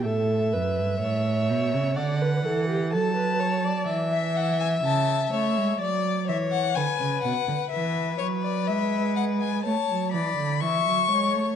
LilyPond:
<<
  \new Staff \with { instrumentName = "Violin" } { \time 4/4 \key a \mixolydian \tempo 4 = 63 r1 | r16 e''16 fis''16 gis''16 a''8 cis''8 d''8 e''16 fis''16 gis''8 fis''8 | e''8 cis''16 d''16 e''8 fis''16 gis''16 a''8 b''8 cis'''4 | }
  \new Staff \with { instrumentName = "Violin" } { \time 4/4 \key a \mixolydian e''2 fis''4 a''4 | e''2 d''8 cis''8 b'4 | b'2 cis''8 d''8 e''8 cis''8 | }
  \new Staff \with { instrumentName = "Viola" } { \time 4/4 \key a \mixolydian a'8 b'8 cis''4 d''16 b'16 a'16 g'16 a'16 b'16 cis''16 d''16 | r1 | r1 | }
  \new Staff \with { instrumentName = "Cello" } { \clef bass \time 4/4 \key a \mixolydian a,8 fis,16 g,16 a,8 b,16 cis16 d8 e8 fis4 | e4 cis8 a16 gis16 fis8 e8 d16 cis16 b,16 d16 | e8 fis8 gis4 a16 fis16 e16 d16 e16 fis16 gis16 a16 | }
>>